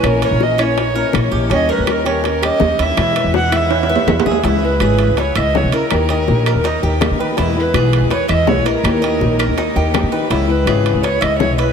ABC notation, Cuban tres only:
X:1
M:4/4
L:1/8
Q:1/4=164
K:D#phr
V:1 name="Cuban tres"
C A2 C2 A2 =G | C A2 C2 =G2 E- | E B2 E2 B2 G | E2 G2 B e2 A- |
A d2 A D =G2 B | E2 G2 B e2 A- | A d2 A D =G2 B | E2 G2 B e2 B |]